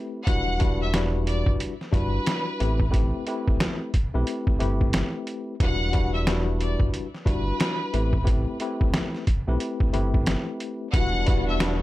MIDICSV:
0, 0, Header, 1, 6, 480
1, 0, Start_track
1, 0, Key_signature, 1, "minor"
1, 0, Tempo, 666667
1, 194, Time_signature, 4, 2, 24, 8
1, 8512, End_track
2, 0, Start_track
2, 0, Title_t, "Violin section"
2, 0, Program_c, 0, 48
2, 179, Note_on_c, 0, 78, 115
2, 550, Note_off_c, 0, 78, 0
2, 590, Note_on_c, 0, 76, 84
2, 669, Note_off_c, 0, 76, 0
2, 914, Note_on_c, 0, 74, 78
2, 1047, Note_off_c, 0, 74, 0
2, 1399, Note_on_c, 0, 71, 94
2, 2087, Note_off_c, 0, 71, 0
2, 4036, Note_on_c, 0, 78, 122
2, 4400, Note_off_c, 0, 78, 0
2, 4418, Note_on_c, 0, 76, 77
2, 4503, Note_off_c, 0, 76, 0
2, 4762, Note_on_c, 0, 74, 69
2, 4891, Note_off_c, 0, 74, 0
2, 5231, Note_on_c, 0, 71, 93
2, 5923, Note_off_c, 0, 71, 0
2, 7858, Note_on_c, 0, 78, 121
2, 8230, Note_off_c, 0, 78, 0
2, 8270, Note_on_c, 0, 76, 86
2, 8349, Note_off_c, 0, 76, 0
2, 8512, End_track
3, 0, Start_track
3, 0, Title_t, "Tine electric piano"
3, 0, Program_c, 1, 4
3, 0, Note_on_c, 1, 57, 101
3, 0, Note_on_c, 1, 60, 83
3, 0, Note_on_c, 1, 64, 88
3, 0, Note_on_c, 1, 67, 91
3, 0, Note_on_c, 1, 71, 98
3, 147, Note_off_c, 1, 57, 0
3, 148, Note_off_c, 1, 60, 0
3, 149, Note_off_c, 1, 64, 0
3, 150, Note_off_c, 1, 67, 0
3, 151, Note_off_c, 1, 71, 0
3, 198, Note_on_c, 1, 55, 94
3, 201, Note_on_c, 1, 62, 88
3, 203, Note_on_c, 1, 64, 82
3, 205, Note_on_c, 1, 66, 90
3, 208, Note_on_c, 1, 71, 92
3, 416, Note_off_c, 1, 55, 0
3, 419, Note_off_c, 1, 62, 0
3, 421, Note_off_c, 1, 64, 0
3, 425, Note_off_c, 1, 66, 0
3, 425, Note_on_c, 1, 55, 92
3, 426, Note_off_c, 1, 71, 0
3, 427, Note_on_c, 1, 62, 87
3, 430, Note_on_c, 1, 64, 79
3, 432, Note_on_c, 1, 66, 83
3, 434, Note_on_c, 1, 71, 106
3, 655, Note_off_c, 1, 55, 0
3, 656, Note_off_c, 1, 62, 0
3, 657, Note_off_c, 1, 64, 0
3, 658, Note_off_c, 1, 66, 0
3, 659, Note_off_c, 1, 71, 0
3, 673, Note_on_c, 1, 55, 88
3, 676, Note_on_c, 1, 62, 89
3, 678, Note_on_c, 1, 64, 89
3, 680, Note_on_c, 1, 66, 91
3, 682, Note_on_c, 1, 71, 105
3, 1242, Note_off_c, 1, 55, 0
3, 1244, Note_off_c, 1, 62, 0
3, 1245, Note_off_c, 1, 64, 0
3, 1246, Note_off_c, 1, 66, 0
3, 1247, Note_off_c, 1, 71, 0
3, 1379, Note_on_c, 1, 55, 92
3, 1382, Note_on_c, 1, 62, 89
3, 1384, Note_on_c, 1, 64, 86
3, 1387, Note_on_c, 1, 66, 86
3, 1389, Note_on_c, 1, 71, 97
3, 1866, Note_off_c, 1, 64, 0
3, 1867, Note_off_c, 1, 55, 0
3, 1868, Note_off_c, 1, 62, 0
3, 1869, Note_on_c, 1, 57, 93
3, 1870, Note_off_c, 1, 66, 0
3, 1871, Note_off_c, 1, 71, 0
3, 1872, Note_on_c, 1, 60, 85
3, 1874, Note_on_c, 1, 64, 84
3, 1877, Note_on_c, 1, 67, 83
3, 1879, Note_on_c, 1, 71, 103
3, 2038, Note_off_c, 1, 57, 0
3, 2039, Note_off_c, 1, 60, 0
3, 2040, Note_off_c, 1, 64, 0
3, 2042, Note_off_c, 1, 67, 0
3, 2043, Note_off_c, 1, 71, 0
3, 2092, Note_on_c, 1, 57, 90
3, 2094, Note_on_c, 1, 60, 84
3, 2096, Note_on_c, 1, 64, 89
3, 2099, Note_on_c, 1, 67, 90
3, 2101, Note_on_c, 1, 71, 101
3, 2328, Note_off_c, 1, 57, 0
3, 2329, Note_off_c, 1, 60, 0
3, 2330, Note_off_c, 1, 64, 0
3, 2332, Note_off_c, 1, 67, 0
3, 2333, Note_off_c, 1, 71, 0
3, 2355, Note_on_c, 1, 57, 99
3, 2357, Note_on_c, 1, 60, 84
3, 2360, Note_on_c, 1, 64, 84
3, 2362, Note_on_c, 1, 67, 88
3, 2365, Note_on_c, 1, 71, 98
3, 2805, Note_off_c, 1, 57, 0
3, 2806, Note_off_c, 1, 60, 0
3, 2807, Note_off_c, 1, 64, 0
3, 2808, Note_off_c, 1, 67, 0
3, 2810, Note_off_c, 1, 71, 0
3, 2980, Note_on_c, 1, 57, 94
3, 2982, Note_on_c, 1, 60, 87
3, 2984, Note_on_c, 1, 64, 82
3, 2987, Note_on_c, 1, 67, 84
3, 2989, Note_on_c, 1, 71, 105
3, 3291, Note_off_c, 1, 57, 0
3, 3292, Note_off_c, 1, 60, 0
3, 3293, Note_off_c, 1, 64, 0
3, 3294, Note_off_c, 1, 67, 0
3, 3295, Note_off_c, 1, 71, 0
3, 3307, Note_on_c, 1, 57, 96
3, 3309, Note_on_c, 1, 60, 82
3, 3312, Note_on_c, 1, 64, 86
3, 3314, Note_on_c, 1, 67, 96
3, 3316, Note_on_c, 1, 71, 99
3, 3986, Note_off_c, 1, 57, 0
3, 3987, Note_off_c, 1, 60, 0
3, 3989, Note_off_c, 1, 64, 0
3, 3990, Note_off_c, 1, 67, 0
3, 3991, Note_off_c, 1, 71, 0
3, 4038, Note_on_c, 1, 55, 90
3, 4041, Note_on_c, 1, 62, 90
3, 4043, Note_on_c, 1, 64, 84
3, 4045, Note_on_c, 1, 66, 86
3, 4047, Note_on_c, 1, 71, 89
3, 4257, Note_off_c, 1, 55, 0
3, 4260, Note_off_c, 1, 62, 0
3, 4262, Note_off_c, 1, 64, 0
3, 4265, Note_off_c, 1, 66, 0
3, 4266, Note_off_c, 1, 71, 0
3, 4266, Note_on_c, 1, 55, 95
3, 4268, Note_on_c, 1, 62, 88
3, 4270, Note_on_c, 1, 64, 81
3, 4273, Note_on_c, 1, 66, 85
3, 4275, Note_on_c, 1, 71, 104
3, 4495, Note_off_c, 1, 55, 0
3, 4496, Note_off_c, 1, 62, 0
3, 4497, Note_off_c, 1, 64, 0
3, 4499, Note_off_c, 1, 66, 0
3, 4500, Note_off_c, 1, 71, 0
3, 4514, Note_on_c, 1, 55, 90
3, 4517, Note_on_c, 1, 62, 89
3, 4519, Note_on_c, 1, 64, 89
3, 4521, Note_on_c, 1, 66, 89
3, 4524, Note_on_c, 1, 71, 107
3, 5083, Note_off_c, 1, 55, 0
3, 5084, Note_off_c, 1, 62, 0
3, 5085, Note_off_c, 1, 64, 0
3, 5086, Note_off_c, 1, 66, 0
3, 5088, Note_off_c, 1, 71, 0
3, 5220, Note_on_c, 1, 55, 93
3, 5223, Note_on_c, 1, 62, 88
3, 5225, Note_on_c, 1, 64, 90
3, 5227, Note_on_c, 1, 66, 88
3, 5230, Note_on_c, 1, 71, 105
3, 5707, Note_off_c, 1, 55, 0
3, 5707, Note_off_c, 1, 64, 0
3, 5708, Note_off_c, 1, 62, 0
3, 5711, Note_off_c, 1, 66, 0
3, 5711, Note_on_c, 1, 57, 93
3, 5712, Note_off_c, 1, 71, 0
3, 5714, Note_on_c, 1, 60, 86
3, 5716, Note_on_c, 1, 64, 83
3, 5718, Note_on_c, 1, 67, 79
3, 5721, Note_on_c, 1, 71, 105
3, 5879, Note_off_c, 1, 57, 0
3, 5880, Note_off_c, 1, 60, 0
3, 5881, Note_off_c, 1, 64, 0
3, 5882, Note_off_c, 1, 67, 0
3, 5884, Note_off_c, 1, 71, 0
3, 5932, Note_on_c, 1, 57, 88
3, 5935, Note_on_c, 1, 60, 85
3, 5937, Note_on_c, 1, 64, 91
3, 5939, Note_on_c, 1, 67, 92
3, 5941, Note_on_c, 1, 71, 107
3, 6168, Note_off_c, 1, 57, 0
3, 6169, Note_off_c, 1, 60, 0
3, 6171, Note_off_c, 1, 64, 0
3, 6172, Note_off_c, 1, 67, 0
3, 6173, Note_off_c, 1, 71, 0
3, 6196, Note_on_c, 1, 57, 96
3, 6198, Note_on_c, 1, 60, 83
3, 6200, Note_on_c, 1, 64, 89
3, 6203, Note_on_c, 1, 67, 84
3, 6205, Note_on_c, 1, 71, 96
3, 6645, Note_off_c, 1, 57, 0
3, 6646, Note_off_c, 1, 60, 0
3, 6648, Note_off_c, 1, 64, 0
3, 6649, Note_off_c, 1, 67, 0
3, 6650, Note_off_c, 1, 71, 0
3, 6822, Note_on_c, 1, 57, 92
3, 6823, Note_on_c, 1, 60, 87
3, 6826, Note_on_c, 1, 64, 84
3, 6828, Note_on_c, 1, 67, 82
3, 6830, Note_on_c, 1, 71, 103
3, 7132, Note_off_c, 1, 57, 0
3, 7132, Note_off_c, 1, 60, 0
3, 7134, Note_off_c, 1, 64, 0
3, 7135, Note_off_c, 1, 67, 0
3, 7136, Note_off_c, 1, 71, 0
3, 7149, Note_on_c, 1, 57, 99
3, 7151, Note_on_c, 1, 60, 84
3, 7153, Note_on_c, 1, 64, 87
3, 7155, Note_on_c, 1, 67, 92
3, 7158, Note_on_c, 1, 71, 102
3, 7827, Note_off_c, 1, 57, 0
3, 7828, Note_off_c, 1, 60, 0
3, 7829, Note_off_c, 1, 64, 0
3, 7830, Note_off_c, 1, 67, 0
3, 7831, Note_off_c, 1, 71, 0
3, 7878, Note_on_c, 1, 55, 94
3, 7880, Note_on_c, 1, 62, 87
3, 7883, Note_on_c, 1, 64, 85
3, 7885, Note_on_c, 1, 66, 88
3, 7888, Note_on_c, 1, 71, 97
3, 8097, Note_off_c, 1, 55, 0
3, 8099, Note_off_c, 1, 62, 0
3, 8102, Note_off_c, 1, 64, 0
3, 8105, Note_off_c, 1, 66, 0
3, 8106, Note_off_c, 1, 71, 0
3, 8106, Note_on_c, 1, 55, 94
3, 8107, Note_on_c, 1, 62, 87
3, 8110, Note_on_c, 1, 64, 86
3, 8113, Note_on_c, 1, 66, 87
3, 8115, Note_on_c, 1, 71, 106
3, 8335, Note_off_c, 1, 55, 0
3, 8336, Note_off_c, 1, 62, 0
3, 8337, Note_off_c, 1, 64, 0
3, 8338, Note_off_c, 1, 66, 0
3, 8339, Note_off_c, 1, 71, 0
3, 8354, Note_on_c, 1, 55, 95
3, 8356, Note_on_c, 1, 62, 89
3, 8358, Note_on_c, 1, 64, 90
3, 8360, Note_on_c, 1, 66, 91
3, 8362, Note_on_c, 1, 71, 108
3, 8512, Note_off_c, 1, 55, 0
3, 8512, Note_off_c, 1, 62, 0
3, 8512, Note_off_c, 1, 64, 0
3, 8512, Note_off_c, 1, 66, 0
3, 8512, Note_off_c, 1, 71, 0
3, 8512, End_track
4, 0, Start_track
4, 0, Title_t, "String section"
4, 0, Program_c, 2, 48
4, 7864, Note_on_c, 2, 59, 94
4, 7864, Note_on_c, 2, 62, 96
4, 7864, Note_on_c, 2, 66, 102
4, 8512, Note_off_c, 2, 59, 0
4, 8512, Note_off_c, 2, 62, 0
4, 8512, Note_off_c, 2, 66, 0
4, 8512, End_track
5, 0, Start_track
5, 0, Title_t, "Analog synth bass"
5, 0, Program_c, 3, 38
5, 196, Note_on_c, 3, 28, 105
5, 1034, Note_off_c, 3, 28, 0
5, 1056, Note_on_c, 3, 31, 94
5, 1131, Note_off_c, 3, 31, 0
5, 1390, Note_on_c, 3, 31, 95
5, 1581, Note_off_c, 3, 31, 0
5, 1877, Note_on_c, 3, 33, 102
5, 2255, Note_off_c, 3, 33, 0
5, 2985, Note_on_c, 3, 35, 91
5, 3057, Note_off_c, 3, 35, 0
5, 3221, Note_on_c, 3, 31, 51
5, 3258, Note_off_c, 3, 31, 0
5, 3318, Note_on_c, 3, 31, 94
5, 3623, Note_off_c, 3, 31, 0
5, 4035, Note_on_c, 3, 28, 107
5, 4873, Note_off_c, 3, 28, 0
5, 4895, Note_on_c, 3, 31, 92
5, 4970, Note_off_c, 3, 31, 0
5, 5229, Note_on_c, 3, 31, 93
5, 5421, Note_off_c, 3, 31, 0
5, 5716, Note_on_c, 3, 33, 106
5, 6095, Note_off_c, 3, 33, 0
5, 6825, Note_on_c, 3, 35, 89
5, 6896, Note_off_c, 3, 35, 0
5, 7060, Note_on_c, 3, 31, 50
5, 7097, Note_off_c, 3, 31, 0
5, 7157, Note_on_c, 3, 31, 94
5, 7463, Note_off_c, 3, 31, 0
5, 7876, Note_on_c, 3, 28, 107
5, 8512, Note_off_c, 3, 28, 0
5, 8512, End_track
6, 0, Start_track
6, 0, Title_t, "Drums"
6, 194, Note_on_c, 9, 36, 107
6, 195, Note_on_c, 9, 42, 97
6, 266, Note_off_c, 9, 36, 0
6, 267, Note_off_c, 9, 42, 0
6, 431, Note_on_c, 9, 42, 79
6, 442, Note_on_c, 9, 36, 98
6, 503, Note_off_c, 9, 42, 0
6, 514, Note_off_c, 9, 36, 0
6, 674, Note_on_c, 9, 40, 92
6, 675, Note_on_c, 9, 38, 112
6, 678, Note_on_c, 9, 42, 88
6, 746, Note_off_c, 9, 40, 0
6, 747, Note_off_c, 9, 38, 0
6, 750, Note_off_c, 9, 42, 0
6, 915, Note_on_c, 9, 42, 78
6, 987, Note_off_c, 9, 42, 0
6, 1054, Note_on_c, 9, 36, 91
6, 1126, Note_off_c, 9, 36, 0
6, 1154, Note_on_c, 9, 42, 91
6, 1226, Note_off_c, 9, 42, 0
6, 1304, Note_on_c, 9, 38, 31
6, 1376, Note_off_c, 9, 38, 0
6, 1388, Note_on_c, 9, 36, 97
6, 1395, Note_on_c, 9, 42, 68
6, 1460, Note_off_c, 9, 36, 0
6, 1467, Note_off_c, 9, 42, 0
6, 1630, Note_on_c, 9, 42, 107
6, 1635, Note_on_c, 9, 40, 83
6, 1636, Note_on_c, 9, 38, 108
6, 1702, Note_off_c, 9, 42, 0
6, 1707, Note_off_c, 9, 40, 0
6, 1708, Note_off_c, 9, 38, 0
6, 1875, Note_on_c, 9, 42, 72
6, 1947, Note_off_c, 9, 42, 0
6, 2013, Note_on_c, 9, 36, 99
6, 2085, Note_off_c, 9, 36, 0
6, 2114, Note_on_c, 9, 36, 112
6, 2115, Note_on_c, 9, 42, 102
6, 2186, Note_off_c, 9, 36, 0
6, 2187, Note_off_c, 9, 42, 0
6, 2352, Note_on_c, 9, 42, 78
6, 2424, Note_off_c, 9, 42, 0
6, 2503, Note_on_c, 9, 36, 102
6, 2575, Note_off_c, 9, 36, 0
6, 2594, Note_on_c, 9, 40, 89
6, 2595, Note_on_c, 9, 38, 112
6, 2598, Note_on_c, 9, 42, 86
6, 2666, Note_off_c, 9, 40, 0
6, 2667, Note_off_c, 9, 38, 0
6, 2670, Note_off_c, 9, 42, 0
6, 2835, Note_on_c, 9, 42, 82
6, 2836, Note_on_c, 9, 36, 95
6, 2907, Note_off_c, 9, 42, 0
6, 2908, Note_off_c, 9, 36, 0
6, 3074, Note_on_c, 9, 42, 90
6, 3146, Note_off_c, 9, 42, 0
6, 3218, Note_on_c, 9, 36, 85
6, 3290, Note_off_c, 9, 36, 0
6, 3315, Note_on_c, 9, 42, 71
6, 3387, Note_off_c, 9, 42, 0
6, 3463, Note_on_c, 9, 36, 87
6, 3535, Note_off_c, 9, 36, 0
6, 3550, Note_on_c, 9, 42, 107
6, 3555, Note_on_c, 9, 40, 88
6, 3556, Note_on_c, 9, 38, 108
6, 3622, Note_off_c, 9, 42, 0
6, 3627, Note_off_c, 9, 40, 0
6, 3628, Note_off_c, 9, 38, 0
6, 3794, Note_on_c, 9, 42, 71
6, 3866, Note_off_c, 9, 42, 0
6, 4033, Note_on_c, 9, 36, 112
6, 4034, Note_on_c, 9, 42, 100
6, 4105, Note_off_c, 9, 36, 0
6, 4106, Note_off_c, 9, 42, 0
6, 4271, Note_on_c, 9, 42, 79
6, 4281, Note_on_c, 9, 36, 98
6, 4343, Note_off_c, 9, 42, 0
6, 4353, Note_off_c, 9, 36, 0
6, 4514, Note_on_c, 9, 38, 113
6, 4514, Note_on_c, 9, 40, 92
6, 4517, Note_on_c, 9, 42, 86
6, 4586, Note_off_c, 9, 38, 0
6, 4586, Note_off_c, 9, 40, 0
6, 4589, Note_off_c, 9, 42, 0
6, 4756, Note_on_c, 9, 42, 79
6, 4828, Note_off_c, 9, 42, 0
6, 4893, Note_on_c, 9, 36, 93
6, 4965, Note_off_c, 9, 36, 0
6, 4994, Note_on_c, 9, 42, 93
6, 5066, Note_off_c, 9, 42, 0
6, 5144, Note_on_c, 9, 38, 32
6, 5216, Note_off_c, 9, 38, 0
6, 5227, Note_on_c, 9, 36, 96
6, 5235, Note_on_c, 9, 42, 72
6, 5299, Note_off_c, 9, 36, 0
6, 5307, Note_off_c, 9, 42, 0
6, 5471, Note_on_c, 9, 42, 109
6, 5476, Note_on_c, 9, 38, 106
6, 5476, Note_on_c, 9, 40, 85
6, 5543, Note_off_c, 9, 42, 0
6, 5548, Note_off_c, 9, 38, 0
6, 5548, Note_off_c, 9, 40, 0
6, 5714, Note_on_c, 9, 42, 72
6, 5786, Note_off_c, 9, 42, 0
6, 5853, Note_on_c, 9, 36, 98
6, 5925, Note_off_c, 9, 36, 0
6, 5953, Note_on_c, 9, 36, 109
6, 5954, Note_on_c, 9, 42, 101
6, 6025, Note_off_c, 9, 36, 0
6, 6026, Note_off_c, 9, 42, 0
6, 6191, Note_on_c, 9, 42, 81
6, 6263, Note_off_c, 9, 42, 0
6, 6342, Note_on_c, 9, 36, 98
6, 6414, Note_off_c, 9, 36, 0
6, 6434, Note_on_c, 9, 38, 112
6, 6434, Note_on_c, 9, 40, 92
6, 6437, Note_on_c, 9, 42, 84
6, 6506, Note_off_c, 9, 38, 0
6, 6506, Note_off_c, 9, 40, 0
6, 6509, Note_off_c, 9, 42, 0
6, 6584, Note_on_c, 9, 38, 36
6, 6656, Note_off_c, 9, 38, 0
6, 6675, Note_on_c, 9, 42, 82
6, 6676, Note_on_c, 9, 36, 99
6, 6747, Note_off_c, 9, 42, 0
6, 6748, Note_off_c, 9, 36, 0
6, 6914, Note_on_c, 9, 42, 93
6, 6986, Note_off_c, 9, 42, 0
6, 7059, Note_on_c, 9, 36, 89
6, 7131, Note_off_c, 9, 36, 0
6, 7154, Note_on_c, 9, 42, 68
6, 7226, Note_off_c, 9, 42, 0
6, 7303, Note_on_c, 9, 36, 89
6, 7375, Note_off_c, 9, 36, 0
6, 7390, Note_on_c, 9, 42, 106
6, 7395, Note_on_c, 9, 40, 86
6, 7396, Note_on_c, 9, 38, 107
6, 7462, Note_off_c, 9, 42, 0
6, 7467, Note_off_c, 9, 40, 0
6, 7468, Note_off_c, 9, 38, 0
6, 7634, Note_on_c, 9, 42, 71
6, 7706, Note_off_c, 9, 42, 0
6, 7873, Note_on_c, 9, 36, 116
6, 7875, Note_on_c, 9, 42, 107
6, 7945, Note_off_c, 9, 36, 0
6, 7947, Note_off_c, 9, 42, 0
6, 8111, Note_on_c, 9, 42, 81
6, 8121, Note_on_c, 9, 36, 102
6, 8183, Note_off_c, 9, 42, 0
6, 8193, Note_off_c, 9, 36, 0
6, 8354, Note_on_c, 9, 38, 121
6, 8354, Note_on_c, 9, 40, 91
6, 8357, Note_on_c, 9, 42, 89
6, 8426, Note_off_c, 9, 38, 0
6, 8426, Note_off_c, 9, 40, 0
6, 8429, Note_off_c, 9, 42, 0
6, 8512, End_track
0, 0, End_of_file